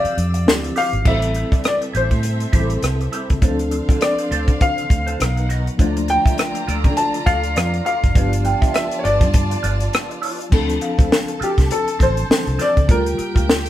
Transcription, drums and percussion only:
0.05 closed hi-hat medium
0.18 closed hi-hat medium
0.34 closed hi-hat medium
0.48 snare loud
0.64 closed hi-hat soft
0.76 snare soft
0.76 open hi-hat medium
0.93 closed hi-hat soft
1.05 kick loud
1.05 crash medium
1.22 closed hi-hat medium
1.34 closed hi-hat medium
1.52 kick medium
1.52 closed hi-hat soft
1.64 cross-stick loud
1.64 closed hi-hat medium
1.82 closed hi-hat soft
1.95 closed hi-hat medium
2.11 kick medium
2.11 closed hi-hat soft
2.23 closed hi-hat medium
2.40 closed hi-hat soft
2.53 kick medium
2.53 closed hi-hat medium
2.70 closed hi-hat soft
2.83 cross-stick medium
2.83 closed hi-hat medium
3.01 closed hi-hat soft
3.13 cross-stick soft
3.13 closed hi-hat medium
3.30 kick medium
3.30 closed hi-hat soft
3.42 kick medium
3.42 closed hi-hat medium
3.59 closed hi-hat medium
3.71 closed hi-hat medium
3.89 kick medium
3.89 closed hi-hat soft
4.01 cross-stick loud
4.01 closed hi-hat medium
4.18 closed hi-hat soft
4.32 closed hi-hat medium
4.48 kick medium
4.48 closed hi-hat soft
4.61 kick medium
4.61 closed hi-hat medium
4.78 closed hi-hat soft
4.90 kick medium
4.90 closed hi-hat medium
5.07 closed hi-hat soft
5.20 cross-stick loud
5.20 closed hi-hat medium
5.37 closed hi-hat soft
5.50 cross-stick soft
5.50 closed hi-hat medium
5.67 closed hi-hat soft
5.79 kick medium
5.79 closed hi-hat medium
5.97 closed hi-hat medium
6.08 closed hi-hat medium
6.26 kick medium
6.26 closed hi-hat medium
6.38 cross-stick loud
6.38 closed hi-hat medium
6.55 closed hi-hat medium
6.69 closed hi-hat medium
6.84 kick medium
6.84 closed hi-hat soft
6.97 closed hi-hat medium
7.14 closed hi-hat medium
7.27 kick medium
7.27 closed hi-hat medium
7.43 closed hi-hat soft
7.56 cross-stick loud
7.56 closed hi-hat medium
7.74 closed hi-hat soft
7.86 closed hi-hat medium
8.04 kick medium
8.04 closed hi-hat soft
8.15 kick loud
8.15 closed hi-hat medium
8.33 closed hi-hat medium
8.45 closed hi-hat medium
8.62 kick medium
8.62 closed hi-hat medium
8.74 cross-stick loud
8.74 closed hi-hat medium
8.91 closed hi-hat medium
9.05 closed hi-hat medium
9.21 kick medium
9.21 cross-stick soft
9.21 closed hi-hat soft
9.34 kick medium
9.34 closed hi-hat medium
9.51 closed hi-hat medium
9.64 closed hi-hat medium
9.80 closed hi-hat soft
9.93 cross-stick loud
9.93 closed hi-hat medium
10.11 closed hi-hat soft
10.23 open hi-hat medium
10.41 closed hi-hat soft
10.52 kick loud
10.52 crash medium
10.69 closed hi-hat medium
10.81 closed hi-hat medium
10.99 kick medium
10.99 closed hi-hat medium
11.12 snare loud
11.28 closed hi-hat medium
11.42 closed hi-hat medium
11.58 kick medium
11.58 snare soft
11.58 closed hi-hat soft
11.71 closed hi-hat medium
11.88 closed hi-hat soft
12.00 kick medium
12.00 closed hi-hat medium
12.17 closed hi-hat medium
12.31 snare loud
12.47 closed hi-hat soft
12.59 snare soft
12.59 closed hi-hat medium
12.77 kick medium
12.77 closed hi-hat soft
12.89 kick loud
12.89 closed hi-hat medium
13.06 closed hi-hat medium
13.19 closed hi-hat medium
13.36 kick medium
13.36 closed hi-hat soft
13.49 snare loud
13.66 closed hi-hat medium

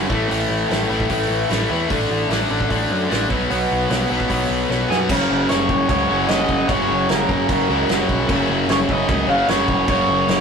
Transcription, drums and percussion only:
0.10 kick loud
0.31 open hi-hat medium
0.71 snare loud
0.71 open hi-hat soft
1.00 kick medium
1.09 kick medium
1.09 open hi-hat medium
1.50 snare loud
1.50 open hi-hat medium
1.90 kick loud
1.90 open hi-hat medium
2.30 snare medium
2.30 open hi-hat medium
2.60 kick medium
2.71 kick medium
2.71 open hi-hat medium
3.11 snare loud
3.11 open hi-hat soft
3.30 kick loud
3.50 open hi-hat medium
3.90 snare loud
3.90 open hi-hat medium
4.20 kick medium
4.30 kick medium
4.30 open hi-hat medium
4.70 snare medium
4.91 snare medium
5.09 kick loud
5.09 crash loud
5.09 crash medium
5.49 snare loud
5.49 crash medium
5.69 kick medium
5.89 kick loud
5.89 crash medium
6.29 snare loud
6.29 crash medium
6.49 kick medium
6.69 kick loud
6.69 crash medium
7.09 snare loud
7.09 crash medium
7.29 kick medium
7.49 kick loud
7.49 crash medium
7.89 snare loud
7.89 crash medium
8.09 kick medium
8.29 kick loud
8.29 crash medium
8.69 snare loud
8.69 crash medium
8.89 kick medium
9.09 kick loud
9.09 crash medium
9.49 snare loud
9.49 crash medium
9.68 kick medium
9.88 kick loud
9.88 crash medium
10.29 snare loud
10.29 crash medium

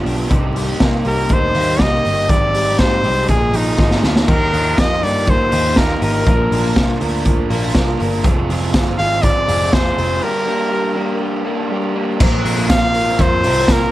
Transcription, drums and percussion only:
0.06 open hi-hat medium
0.30 kick loud
0.30 closed hi-hat medium
0.56 open hi-hat medium
0.80 kick loud
0.80 snare loud
0.80 closed hi-hat medium
1.05 open hi-hat medium
1.29 kick loud
1.29 closed hi-hat medium
1.55 open hi-hat medium
1.79 kick loud
1.79 snare medium
1.79 closed hi-hat medium
2.05 open hi-hat medium
2.29 kick loud
2.29 closed hi-hat medium
2.54 open hi-hat medium
2.79 kick loud
2.79 snare loud
2.79 closed hi-hat medium
3.04 open hi-hat medium
3.28 kick medium
3.28 closed hi-hat medium
3.53 open hi-hat medium
3.79 kick loud
3.79 snare soft
3.91 snare medium
4.04 snare medium
4.16 snare medium
4.28 kick loud
4.28 crash medium
4.54 open hi-hat medium
4.78 kick loud
4.78 snare loud
4.78 closed hi-hat medium
5.03 open hi-hat medium
5.27 kick medium
5.27 closed hi-hat medium
5.52 open hi-hat medium
5.76 kick loud
5.76 snare loud
5.76 closed hi-hat medium
6.02 open hi-hat medium
6.26 kick loud
6.26 closed hi-hat medium
6.52 open hi-hat medium
6.76 kick loud
6.76 snare loud
6.76 closed hi-hat medium
7.01 open hi-hat medium
7.25 kick loud
7.25 closed hi-hat medium
7.50 open hi-hat medium
7.75 kick loud
7.75 snare loud
7.75 closed hi-hat medium
8.00 open hi-hat medium
8.24 kick loud
8.24 closed hi-hat medium
8.50 open hi-hat medium
8.74 kick loud
8.74 snare loud
8.74 closed hi-hat medium
8.99 open hi-hat medium
9.23 kick loud
9.23 closed hi-hat medium
9.48 open hi-hat medium
9.73 kick loud
9.73 snare loud
9.73 closed hi-hat medium
9.98 open hi-hat medium
12.20 kick loud
12.20 crash medium
12.20 tambourine soft
12.45 open hi-hat medium
12.70 kick loud
12.70 snare loud
12.70 hi-hat pedal medium
12.70 ride medium
12.70 tambourine medium
12.94 open hi-hat medium
12.94 tambourine soft
13.19 kick loud
13.19 hi-hat pedal medium
13.19 ride medium
13.19 tambourine medium
13.43 open hi-hat medium
13.43 tambourine medium
13.68 kick loud
13.68 snare loud
13.68 ride medium
13.68 tambourine medium

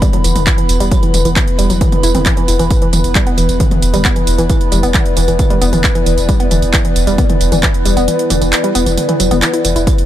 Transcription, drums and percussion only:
0.02 kick loud
0.02 closed hi-hat medium
0.02 mid tom medium
0.02 tambourine soft
0.13 closed hi-hat medium
0.13 mid tom loud
0.24 open hi-hat loud
0.24 tambourine medium
0.36 closed hi-hat medium
0.36 mid tom loud
0.36 tambourine soft
0.47 kick loud
0.47 clap loud
0.47 closed hi-hat medium
0.47 tambourine soft
0.58 closed hi-hat medium
0.69 open hi-hat loud
0.69 tambourine medium
0.80 closed hi-hat medium
0.80 tambourine soft
0.91 kick loud
0.91 closed hi-hat medium
0.91 tambourine soft
1.03 closed hi-hat medium
1.14 open hi-hat loud
1.14 mid tom medium
1.14 tambourine medium
1.25 closed hi-hat medium
1.25 tambourine soft
1.36 kick loud
1.36 clap loud
1.36 closed hi-hat medium
1.36 tambourine soft
1.48 closed hi-hat medium
1.59 open hi-hat loud
1.59 tambourine medium
1.70 closed hi-hat medium
1.70 tambourine soft
1.81 kick loud
1.81 closed hi-hat medium
1.81 mid tom medium
1.81 tambourine soft
1.92 closed hi-hat medium
1.92 mid tom loud
2.03 open hi-hat loud
2.03 tambourine medium
2.15 closed hi-hat medium
2.15 mid tom loud
2.15 tambourine soft
2.26 kick loud
2.26 clap loud
2.26 closed hi-hat medium
2.26 tambourine soft
2.37 closed hi-hat medium
2.48 open hi-hat loud
2.48 tambourine medium
2.59 closed hi-hat medium
2.59 tambourine soft
2.70 kick loud
2.70 closed hi-hat medium
2.70 tambourine soft
2.82 closed hi-hat soft
2.93 open hi-hat loud
2.93 mid tom medium
2.93 tambourine medium
3.04 closed hi-hat medium
3.04 tambourine soft
3.15 kick loud
3.15 clap loud
3.15 closed hi-hat medium
3.15 tambourine soft
3.27 closed hi-hat soft
3.38 open hi-hat loud
3.38 tambourine medium
3.49 closed hi-hat soft
3.49 tambourine soft
3.60 kick loud
3.60 closed hi-hat medium
3.60 mid tom medium
3.60 tambourine soft
3.71 closed hi-hat medium
3.71 mid tom loud
3.82 open hi-hat loud
3.82 tambourine medium
3.94 closed hi-hat medium
3.94 mid tom loud
3.94 tambourine soft
4.05 kick loud
4.05 clap loud
4.05 closed hi-hat medium
4.05 tambourine soft
4.16 closed hi-hat medium
4.27 open hi-hat loud
4.27 tambourine medium
4.38 closed hi-hat medium
4.38 tambourine soft
4.50 kick loud
4.50 closed hi-hat medium
4.50 tambourine soft
4.61 closed hi-hat medium
4.72 open hi-hat loud
4.72 mid tom medium
4.72 tambourine medium
4.83 closed hi-hat medium
4.83 tambourine soft
4.94 kick loud
4.94 clap loud
4.94 closed hi-hat medium
4.94 tambourine soft
5.06 closed hi-hat soft
5.17 open hi-hat loud
5.17 tambourine medium
5.28 closed hi-hat soft
5.28 tambourine soft
5.39 kick loud
5.39 closed hi-hat medium
5.39 mid tom medium
5.39 tambourine soft
5.50 closed hi-hat medium
5.50 mid tom medium
5.62 open hi-hat loud
5.62 tambourine medium
5.73 closed hi-hat medium
5.73 mid tom medium
5.73 tambourine soft
5.84 kick loud
5.84 clap loud
5.84 closed hi-hat medium
5.84 tambourine soft
5.95 closed hi-hat medium
6.06 open hi-hat loud
6.06 tambourine medium
6.18 closed hi-hat medium
6.18 tambourine soft
6.29 kick loud
6.29 closed hi-hat medium
6.29 tambourine soft
6.40 closed hi-hat medium
6.51 open hi-hat loud
6.51 mid tom medium
6.51 tambourine medium
6.62 closed hi-hat medium
6.62 tambourine soft
6.74 kick loud
6.74 clap loud
6.74 closed hi-hat medium
6.74 tambourine soft
6.85 closed hi-hat medium
6.96 open hi-hat loud
6.96 tambourine medium
7.07 closed hi-hat soft
7.07 tambourine soft
7.18 kick loud
7.18 closed hi-hat medium
7.18 mid tom medium
7.18 tambourine soft
7.30 closed hi-hat medium
7.30 mid tom medium
7.41 open hi-hat loud
7.41 tambourine medium
7.52 closed hi-hat medium
7.52 mid tom medium
7.52 tambourine soft
7.63 kick loud
7.63 clap loud
7.63 closed hi-hat medium
7.63 tambourine soft
7.74 closed hi-hat medium
7.86 open hi-hat loud
7.86 tambourine medium
7.97 closed hi-hat medium
7.97 tambourine soft
8.08 closed hi-hat medium
8.08 tambourine soft
8.19 closed hi-hat medium
8.30 open hi-hat loud
8.30 mid tom medium
8.30 tambourine medium
8.42 closed hi-hat medium
8.42 tambourine soft
8.53 clap loud
8.53 closed hi-hat medium
8.53 tambourine soft
8.64 closed hi-hat medium
8.75 open hi-hat loud
8.75 tambourine medium
8.86 closed hi-hat medium
8.86 tambourine soft
8.98 closed hi-hat medium
8.98 mid tom medium
8.98 tambourine soft
9.09 open hi-hat medium
9.09 mid tom medium
9.20 open hi-hat loud
9.20 tambourine medium
9.31 closed hi-hat medium
9.31 mid tom medium
9.31 tambourine soft
9.42 clap loud
9.42 closed hi-hat medium
9.42 tambourine soft
9.54 closed hi-hat medium
9.65 open hi-hat loud
9.65 tambourine medium
9.76 closed hi-hat medium
9.76 tambourine soft
9.87 kick loud
9.87 closed hi-hat medium
9.87 tambourine soft
9.98 closed hi-hat medium

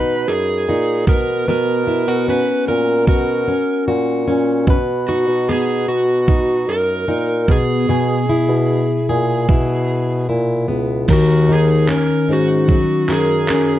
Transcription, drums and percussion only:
1.07 kick medium
3.07 kick medium
4.67 kick medium
6.28 kick medium
7.48 kick medium
9.49 kick loud
11.08 kick medium
11.08 crash medium
11.89 clap loud
12.69 kick medium
13.09 clap medium
13.48 clap loud

